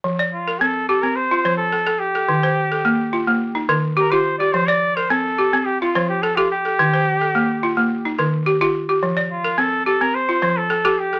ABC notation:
X:1
M:4/4
L:1/16
Q:1/4=107
K:Fmix
V:1 name="Flugelhorn"
z2 F2 A2 A B c3 A3 G2- | G8- G2 z2 B c2 d | c d2 c A4 G F2 G A F G2- | G8- G2 z6 |
z2 F2 A2 A B c3 A3 G2 |]
V:2 name="Balafon"
z d2 B3 G3 F c2 A3 A- | A c2 A3 F3 E B2 G F2 G- | G d2 B3 G3 F c2 A G2 A- | A c2 A3 F3 E B2 G F2 G- |
G d2 B3 G3 F c2 A G2 A |]
V:3 name="Balafon"
F,2 z2 C2 z C2 z F,2 z A2 z | E,2 z2 B,2 z B,2 z E,2 z G2 z | F,2 z2 C2 z C2 z F,2 z A2 z | E,2 z2 B,2 z B,2 z E,2 z G2 z |
F,2 z2 C2 z C2 z F,2 z A2 z |]